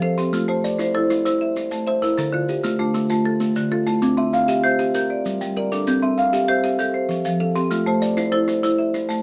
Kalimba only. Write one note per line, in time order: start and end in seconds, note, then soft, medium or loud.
0.02 0.33 A4 medium
0.18 0.49 G4 medium
0.33 0.64 A3 medium
0.49 0.93 C5 medium
0.64 1.10 D5 medium
0.79 1.09 E4 medium
0.94 1.25 C5 medium
1.10 1.41 E4 medium
1.26 1.72 C5 medium
1.57 1.87 E4 medium
1.87 2.18 C5 medium
2.02 2.33 A#4 medium
2.18 2.49 D3 medium
2.34 2.78 F4 medium
2.49 2.95 G4 medium
2.64 2.93 A3 medium
2.79 3.08 F4 medium
2.94 3.25 A3 medium
3.10 3.56 F4 medium
3.40 3.71 A3 medium
3.72 4.02 F4 medium
3.87 4.18 E4 medium
4.02 4.33 C4 medium
4.18 4.63 E5 medium
4.33 4.79 F5 medium
4.48 4.78 G4 medium
4.65 5.10 E5 medium
4.79 4.94 G4 medium
4.95 5.41 A#4 medium
5.26 5.56 G3 medium
5.57 5.87 A#4 medium
5.72 6.02 A4 medium
5.87 6.18 C4 medium
6.03 6.47 E5 medium
6.18 6.64 F5 medium
6.33 6.62 G4 medium
6.48 6.94 E5 medium
6.64 6.79 G4 medium
6.79 7.25 A4 medium
7.09 7.40 F3 medium
7.40 7.71 A4 medium
7.56 7.86 G4 medium
7.71 8.02 A3 medium
7.87 8.31 C5 medium
8.02 8.48 D5 medium
8.17 8.47 E4 medium
8.32 8.62 C5 medium
8.48 8.78 E4 medium
8.64 9.09 C5 medium
8.94 9.22 E4 medium